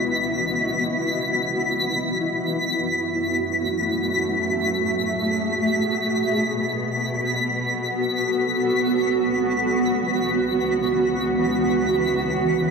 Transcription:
0.00 2.78 C#2 medium
0.00 4.05 B3 medium
0.00 4.05 E4 medium
0.00 5.90 F#4 medium
0.00 2.82 D#5 medium
0.00 12.71 B6 medium
2.81 5.85 F#2 medium
2.81 5.89 A3 medium
4.07 5.89 E5 medium
4.19 5.89 G#4 medium
5.89 8.93 B2 medium
5.89 12.71 B3 medium
6.11 12.71 F#4 medium
7.28 8.97 A4 medium
7.28 12.71 F#5 medium
8.98 12.71 C#2 medium
9.68 12.71 E3 medium

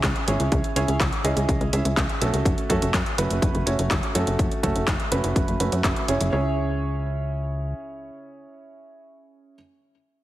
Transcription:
0.00 0.14 C#2 medium
0.00 0.25 C#4 medium
0.00 0.25 E4 medium
0.00 0.25 G#4 medium
0.00 0.25 E5 medium
0.00 kick loud
0.00 clap loud
0.00 closed hi-hat soft
0.16 closed hi-hat soft
0.28 0.38 G#1 medium
0.28 0.73 C#4 medium
0.28 0.73 E4 medium
0.28 0.73 G#4 medium
0.28 0.73 C#5 medium
0.28 closed hi-hat medium
0.40 0.50 C#2 medium
0.40 closed hi-hat soft
0.52 0.62 C#2 loud
0.52 kick loud
0.52 closed hi-hat soft
0.64 closed hi-hat soft
0.76 0.86 C#2 medium
0.76 0.95 C#4 medium
0.76 0.95 E4 medium
0.76 0.95 G#4 medium
0.76 0.95 C#5 loud
0.76 closed hi-hat medium
0.88 0.98 C#2 medium
0.88 closed hi-hat soft
1.00 1.10 C#2 medium
1.00 kick loud
1.00 clap loud
1.00 closed hi-hat soft
1.13 closed hi-hat soft
1.24 1.35 C#2 medium
1.24 1.70 C#4 medium
1.24 1.70 E4 medium
1.24 1.70 G#4 medium
1.24 1.70 D#5 medium
1.24 closed hi-hat medium
1.36 1.47 C#2 medium
1.36 closed hi-hat soft
1.49 1.59 C#2 loud
1.49 kick loud
1.49 closed hi-hat soft
1.61 1.71 C#2 medium
1.61 closed hi-hat soft
1.73 1.83 C#2 medium
1.73 2.18 C#4 medium
1.73 2.18 E4 medium
1.73 2.18 G#4 medium
1.73 2.18 E5 medium
1.73 closed hi-hat medium
1.85 1.95 C#2 medium
1.85 closed hi-hat soft
1.97 2.07 C#2 loud
1.97 kick loud
1.97 clap loud
1.97 closed hi-hat soft
2.09 closed hi-hat soft
2.21 2.31 B1 medium
2.21 2.67 A3 medium
2.21 2.67 C#4 medium
2.21 2.67 F#4 medium
2.21 2.67 A4 medium
2.21 closed hi-hat medium
2.34 2.44 C#2 medium
2.34 closed hi-hat soft
2.45 2.56 F#1 loud
2.45 kick loud
2.45 closed hi-hat soft
2.58 closed hi-hat soft
2.70 2.80 F#2 medium
2.70 2.89 A3 medium
2.70 2.89 C#4 medium
2.70 2.89 F#4 medium
2.70 2.89 A4 loud
2.70 kick medium
2.70 closed hi-hat medium
2.82 2.92 F#1 medium
2.82 closed hi-hat soft
2.94 3.04 F#2 loud
2.94 kick loud
2.94 clap loud
2.94 closed hi-hat soft
3.06 closed hi-hat soft
3.18 3.28 F#1 medium
3.18 3.64 A3 medium
3.18 3.64 C#4 medium
3.18 3.64 F#4 medium
3.18 3.64 B4 loud
3.18 closed hi-hat medium
3.31 3.40 F#1 medium
3.31 closed hi-hat soft
3.42 3.52 F#1 loud
3.42 kick loud
3.42 closed hi-hat medium
3.55 3.65 F#1 medium
3.55 closed hi-hat soft
3.66 3.77 F#1 medium
3.66 4.12 A3 medium
3.66 4.12 C#4 medium
3.66 4.12 F#4 medium
3.66 4.12 C#5 medium
3.66 closed hi-hat medium
3.79 3.89 F#1 medium
3.79 closed hi-hat soft
3.91 4.01 F#1 medium
3.91 kick loud
3.91 clap loud
3.91 closed hi-hat soft
4.03 closed hi-hat soft
4.15 4.25 F#2 medium
4.15 4.60 A3 medium
4.15 4.60 C#4 medium
4.15 4.60 F#4 medium
4.15 4.60 A4 medium
4.15 closed hi-hat medium
4.27 4.37 F#1 medium
4.27 closed hi-hat soft
4.39 4.49 F#1 loud
4.39 kick loud
4.39 closed hi-hat soft
4.51 closed hi-hat soft
4.63 4.73 F#1 medium
4.63 4.82 A3 medium
4.63 4.82 C#4 medium
4.63 4.82 F#4 medium
4.63 4.82 A4 medium
4.63 kick medium
4.63 closed hi-hat medium
4.76 4.86 F#1 medium
4.76 closed hi-hat soft
4.88 4.98 F#1 loud
4.88 kick loud
4.88 clap loud
4.88 closed hi-hat soft
5.00 closed hi-hat soft
5.12 5.22 F#1 medium
5.12 5.57 A3 medium
5.12 5.57 C#4 medium
5.12 5.57 F#4 medium
5.12 5.57 B4 medium
5.12 closed hi-hat medium
5.24 5.34 F#1 medium
5.24 closed hi-hat medium
5.36 5.46 F#1 medium
5.36 kick loud
5.36 closed hi-hat soft
5.48 5.58 F#1 medium
5.48 closed hi-hat soft
5.60 5.70 F#1 medium
5.60 6.05 A3 medium
5.60 6.05 C#4 medium
5.60 6.05 F#4 medium
5.60 6.05 B4 medium
5.60 closed hi-hat medium
5.72 5.82 F#2 medium
5.72 closed hi-hat soft
5.84 5.94 F#1 medium
5.84 kick loud
5.84 clap loud
5.84 closed hi-hat soft
5.96 closed hi-hat soft
6.08 6.19 F#1 medium
6.08 6.31 C#4 medium
6.08 6.31 E4 medium
6.08 6.31 G#4 medium
6.08 6.31 C#5 medium
6.08 closed hi-hat medium
6.21 6.31 F#1 medium
6.21 closed hi-hat medium
6.32 7.74 C#2 loud
6.32 9.55 C#4 medium
6.32 9.54 E4 medium
6.32 9.55 G#4 medium
6.32 9.55 C#5 medium

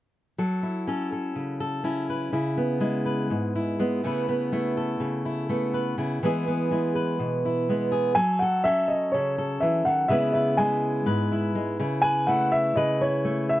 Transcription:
0.38 2.33 F#3 soft
0.38 0.87 A4 soft
0.63 1.84 E4 soft
0.87 1.83 C#4 soft
0.87 1.11 A4 soft
1.12 1.59 A4 soft
1.36 2.31 C#3 soft
1.60 2.09 A4 soft
1.84 2.57 C#4 soft
1.84 2.33 E4 soft
2.10 2.31 B4 soft
2.32 3.30 C#3 medium
2.32 2.80 E4 soft
2.57 3.79 B3 soft
2.80 3.78 G#3 soft
2.80 3.55 E4 soft
3.06 4.06 B4 soft
3.30 4.03 G#2 soft
3.55 4.05 E4 soft
3.79 4.01 G#3 soft
3.79 4.04 B3 soft
4.04 4.99 C#3 medium
4.04 4.51 A3 soft
4.04 4.28 B3 soft
4.04 4.53 E4 soft
4.04 4.77 B4 soft
4.29 5.49 B3 soft
4.52 5.48 A3 soft
4.52 5.25 E4 soft
4.77 5.74 A4 soft
5.00 5.97 C#3 soft
5.25 5.98 E4 soft
5.49 5.95 A3 soft
5.49 6.22 B3 soft
5.74 5.95 B4 soft
5.98 6.22 C#3 medium
5.98 6.25 E4 soft
6.23 8.13 E3 medium
6.23 6.70 G#3 soft
6.23 6.46 B3 soft
6.23 6.71 E4 soft
6.23 6.95 G#4 medium
6.48 7.68 B3 soft
6.71 7.68 G#3 soft
6.71 7.44 E4 soft
6.95 7.91 B4 soft
7.19 8.13 B2 soft
7.45 8.14 E4 soft
7.69 8.14 G#3 soft
7.69 8.17 B3 soft
7.92 8.16 G#4 soft
8.15 10.09 F#3 medium
8.15 8.40 A4 medium
8.15 8.40 G#5 medium
8.39 8.64 A4 medium
8.39 8.65 F#5 medium
8.64 10.11 C#4 soft
8.64 9.13 A4 medium
8.64 8.89 E5 medium
8.88 9.11 D#5 medium
9.12 9.62 C#3 medium
9.12 9.37 A4 medium
9.12 9.62 C#5 medium
9.38 10.07 A4 soft
9.60 9.86 E3 soft
9.60 9.86 E5 medium
9.85 10.09 D#3 soft
9.85 10.10 F#5 medium
10.08 11.06 C#3 medium
10.08 10.57 G#3 medium
10.08 13.60 B3 soft
10.08 10.58 E4 soft
10.08 10.34 B4 medium
10.08 10.31 E5 medium
10.32 11.06 B4 medium
10.32 10.58 E5 medium
10.57 11.54 G#3 medium
10.57 11.31 E4 soft
10.57 11.75 G#5 medium
11.06 11.79 G#2 medium
11.06 11.82 B4 medium
11.32 11.80 E4 soft
11.55 11.76 G#3 soft
11.79 12.75 C#3 medium
11.79 12.28 E4 soft
12.02 12.77 B4 medium
12.02 12.27 G#5 medium
12.27 13.23 A3 medium
12.27 13.01 E4 soft
12.27 12.52 F#5 medium
12.52 12.74 E5 medium
12.76 13.60 C#3 medium
12.76 13.60 B4 medium
12.76 13.00 D#5 medium
13.01 13.60 E4 soft
13.01 13.50 C#5 medium
13.25 13.60 A3 soft
13.49 13.60 E5 medium

